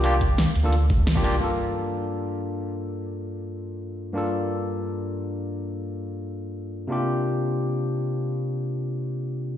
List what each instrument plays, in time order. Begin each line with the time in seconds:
Already playing: sub bass C2
0.03 tine electric piano A#3 D4 F4 G4, closed hi-hat
0.21 kick, closed hi-hat
0.38 snare, closed hi-hat
0.55 sub bass D2, closed hi-hat
0.63 tine electric piano A#3 D4 F4 A4
0.73 closed hi-hat
0.90 kick, closed hi-hat
1.07 sub bass C2, snare, closed hi-hat
1.15 tine electric piano A#3 D4 F4 G4, kick
1.23 tine electric piano A#3 D4 F4 G4, closed hi-hat
1.39 tine electric piano G2 A#3 D4 F4
1.44 tine electric piano A4
4.13 tine electric piano G2 A#3 D4 F4
4.18 tine electric piano A4
6.87 tine electric piano C3 A#3 D4 F4
6.92 tine electric piano G4